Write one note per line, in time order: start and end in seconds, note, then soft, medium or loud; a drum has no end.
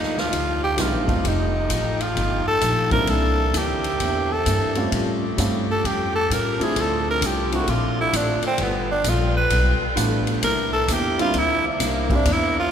0.00 0.31 D#2 medium
0.00 0.18 F3 medium
0.00 0.18 A3 medium
0.00 0.18 D#4 medium
0.00 0.21 D#4 medium
0.00 3.05 D#4 medium
0.00 0.19 G4 medium
0.00 3.05 G4 medium
0.00 3.05 A4 medium
0.00 1.23 F5 medium
0.00 snare soft
0.18 0.63 F4 loud
0.18 snare soft
0.31 0.77 D2 medium
0.31 0.63 F3 soft
0.31 0.64 A3 soft
0.31 0.64 D#4 soft
0.31 0.64 G4 soft
0.31 kick soft
0.31 ride medium
0.64 0.83 G4 loud
0.77 0.93 C2 medium
0.77 1.09 F3 medium
0.77 1.05 F#3 medium
0.77 1.05 G#3 medium
0.77 1.10 A3 medium
0.77 1.05 B3 medium
0.77 1.05 D4 medium
0.77 1.10 D#4 medium
0.77 1.06 E4 medium
0.77 1.10 G4 medium
0.77 kick soft
0.77 snare soft
0.77 hi-hat pedal medium
0.77 ride medium
0.82 1.29 F4 medium
0.93 1.07 A1 medium
1.06 1.23 F1 medium
1.06 1.47 G3 medium
1.06 1.47 A3 medium
1.06 1.48 C4 medium
1.06 1.48 D#4 medium
1.06 1.48 F4 medium
1.06 kick medium
1.06 ride soft
1.23 1.69 F1 medium
1.23 1.55 F3 soft
1.23 1.56 A3 soft
1.23 1.56 D#4 medium
1.23 1.56 G4 medium
1.23 3.06 G5 medium
1.23 kick soft
1.23 ride medium
1.27 2.02 D#4 medium
1.69 2.14 A1 medium
1.69 2.01 F3 medium
1.69 2.01 A3 medium
1.69 2.02 D#4 medium
1.69 2.02 G4 medium
1.69 kick soft
1.69 hi-hat pedal medium
1.69 ride medium
2.00 2.47 F4 loud
2.00 ride medium
2.14 2.44 G1 medium
2.14 2.47 F3 soft
2.14 2.48 A3 soft
2.14 2.48 D#4 medium
2.14 2.48 G4 medium
2.14 kick soft
2.14 ride medium
2.46 2.90 A4 loud
2.46 muted upright bass stroke soft
2.61 3.06 A#1 medium
2.61 2.94 F3 medium
2.61 2.94 A3 medium
2.61 2.95 D#4 medium
2.61 2.95 G4 medium
2.61 kick soft
2.61 hi-hat pedal medium
2.61 ride medium
2.91 3.50 G3 medium
2.91 3.50 A#3 medium
2.91 3.51 C4 medium
2.91 3.51 D4 medium
2.91 3.51 E4 medium
2.91 3.11 A#4 loud
2.91 kick medium
2.91 ride soft
3.07 3.52 C2 medium
3.07 3.39 C3 soft
3.07 3.40 E3 soft
3.07 4.90 A#3 medium
3.07 3.40 A#3 soft
3.07 4.90 D4 medium
3.07 3.41 D4 soft
3.07 3.59 A4 loud
3.07 4.91 C5 medium
3.07 4.90 E5 medium
3.07 kick soft
3.07 ride medium
3.53 3.98 D2 medium
3.53 3.85 C3 medium
3.53 3.85 E3 medium
3.53 3.86 A#3 medium
3.53 3.86 D4 medium
3.53 kick soft
3.53 hi-hat pedal medium
3.53 ride medium
3.57 4.34 G4 medium
3.84 ride medium
4.00 4.44 E2 medium
4.00 4.32 C3 soft
4.00 4.32 E3 soft
4.00 4.33 A#3 soft
4.00 4.33 D4 soft
4.00 kick soft
4.00 ride medium
4.32 4.93 A4 loud
4.46 4.90 G2 medium
4.46 4.78 C3 medium
4.46 4.78 E3 medium
4.46 4.78 A#3 medium
4.46 4.79 D4 medium
4.46 kick soft
4.46 hi-hat pedal medium
4.46 ride medium
4.75 5.34 G3 medium
4.75 5.35 A3 medium
4.75 5.35 C4 medium
4.75 5.35 C#4 medium
4.75 5.35 F4 medium
4.75 ride soft
4.92 5.36 A2 medium
4.92 5.23 A2 medium
4.92 5.24 G3 medium
4.92 5.24 C#4 medium
4.92 5.25 F4 medium
4.92 6.75 G4 medium
4.92 10.40 A4 medium
4.92 kick soft
4.92 ride medium
5.37 5.82 G2 loud
5.37 5.70 A2 medium
5.37 5.64 G3 medium
5.37 5.70 G3 medium
5.37 5.65 A3 medium
5.37 5.65 C4 medium
5.37 5.65 C#4 medium
5.37 5.70 C#4 medium
5.37 5.70 F4 medium
5.37 5.66 F4 medium
5.37 kick soft
5.37 hi-hat pedal medium
5.37 ride medium
5.71 5.88 A4 loud
5.83 6.28 F2 medium
5.83 6.15 A2 soft
5.83 6.15 G3 soft
5.83 6.16 C#4 soft
5.83 6.16 F4 soft
5.83 6.15 G4 medium
5.83 kick soft
5.83 ride medium
6.15 6.35 A4 loud
6.30 6.58 A2 medium
6.30 6.62 A2 medium
6.30 6.62 G3 medium
6.30 6.62 C#4 medium
6.30 6.62 F4 medium
6.30 6.64 A#4 loud
6.30 kick soft
6.30 hi-hat pedal medium
6.30 ride medium
6.59 7.18 F3 medium
6.59 7.18 A3 medium
6.59 7.18 C4 medium
6.59 7.19 D4 medium
6.59 7.19 E4 medium
6.59 6.83 G#4 loud
6.59 muted upright bass stroke soft
6.59 ride medium
6.75 7.20 D2 medium
6.75 7.08 D3 soft
6.75 7.08 A3 soft
6.75 8.40 D4 medium
6.75 8.40 C5 medium
6.75 kick soft
6.75 ride medium
6.79 7.09 C4 medium
6.79 7.09 F4 medium
6.79 7.08 A4 loud
7.11 7.27 A#4 loud
7.21 7.66 C2 medium
7.21 7.53 D3 medium
7.21 7.54 A3 medium
7.21 7.54 C4 medium
7.21 7.54 F4 medium
7.21 kick soft
7.21 hi-hat pedal medium
7.21 ride medium
7.26 7.56 G4 loud
7.51 8.10 F3 medium
7.51 8.10 A3 medium
7.51 8.10 C4 medium
7.51 8.11 D4 medium
7.51 8.11 E4 medium
7.51 7.72 F#4 loud
7.51 ride medium
7.67 8.12 A#1 medium
7.67 7.99 D3 soft
7.67 7.99 A3 soft
7.67 7.99 C4 soft
7.67 8.00 F4 medium
7.67 7.99 F4 medium
7.67 kick soft
7.67 ride medium
8.01 8.18 E4 loud
8.13 8.41 A1 medium
8.13 8.45 D3 medium
8.13 8.45 A3 medium
8.13 8.45 C4 medium
8.13 8.45 D4 medium
8.13 8.46 F4 medium
8.13 kick soft
8.13 hi-hat pedal medium
8.13 ride medium
8.42 muted upright bass stroke soft
8.42 ride soft
8.46 8.64 C4 loud
8.57 9.03 G1 medium
8.57 8.91 G3 soft
8.57 8.91 B3 medium
8.57 10.40 F4 medium
8.57 10.40 B4 medium
8.57 10.40 G5 medium
8.57 kick soft
8.57 ride medium
8.62 8.91 B3 loud
8.62 8.92 F4 medium
8.62 8.92 A4 soft
8.91 9.11 D4 loud
9.04 9.49 A#1 medium
9.04 9.37 G3 medium
9.04 9.37 B3 medium
9.04 9.38 F4 medium
9.04 kick soft
9.04 hi-hat pedal medium
9.04 ride medium
9.08 9.36 F4 medium
9.08 9.38 A4 medium
9.37 9.79 B4 loud
9.50 9.78 B1 medium
9.50 9.83 G3 soft
9.50 9.83 B3 soft
9.50 9.84 F4 soft
9.50 kick soft
9.50 ride medium
9.54 9.84 A4 medium
9.96 10.41 A1 loud
9.96 10.42 G3 medium
9.96 10.28 G3 medium
9.96 10.42 A3 medium
9.96 10.42 B3 medium
9.96 10.28 B3 medium
9.96 10.43 D4 medium
9.96 10.43 F4 medium
9.96 10.29 F4 medium
9.96 10.29 A4 medium
9.96 kick soft
9.96 hi-hat pedal medium
9.96 ride medium
10.27 ride soft
10.42 10.87 C2 medium
10.42 10.74 C3 soft
10.42 10.74 A#3 soft
10.42 12.71 D4 medium
10.42 10.75 D4 soft
10.42 10.75 E4 medium
10.42 12.71 A#4 medium
10.42 10.71 A#4 loud
10.42 12.71 C5 medium
10.42 12.71 E5 medium
10.42 kick soft
10.42 ride medium
10.73 10.94 A4 loud
10.88 11.16 E2 loud
10.88 11.20 C3 medium
10.88 11.21 A#3 medium
10.88 11.20 D4 medium
10.88 11.21 E4 medium
10.88 kick soft
10.88 hi-hat pedal medium
10.88 ride medium
10.93 11.20 G4 loud
11.17 11.32 G3 medium
11.17 11.33 A#3 medium
11.17 11.33 C4 medium
11.17 11.33 D4 medium
11.17 11.34 E4 medium
11.17 11.40 F4 loud
11.17 muted upright bass stroke soft
11.17 ride soft
11.34 11.79 D2 medium
11.34 11.65 C3 soft
11.34 11.66 A#3 soft
11.34 11.66 D4 soft
11.34 11.67 E4 medium
11.34 kick soft
11.34 ride medium
11.38 11.66 E4 loud
11.68 11.84 G3 medium
11.79 12.24 C2 loud
11.79 12.11 C3 medium
11.79 12.12 A#3 medium
11.79 12.12 D4 medium
11.79 12.12 E4 medium
11.79 kick soft
11.79 hi-hat pedal medium
11.79 ride medium
11.85 12.17 A#3 medium
12.10 12.24 G3 medium
12.10 12.24 A#3 medium
12.10 12.25 C4 medium
12.10 12.25 D4 medium
12.10 12.25 G4 medium
12.10 kick medium
12.10 ride medium
12.15 12.34 D4 loud
12.25 12.70 E2 medium
12.25 12.57 C3 medium
12.25 12.58 A#3 soft
12.25 12.58 D4 medium
12.25 12.58 E4 medium
12.25 kick soft
12.25 ride medium
12.33 12.59 E4 loud
12.60 12.71 F4 loud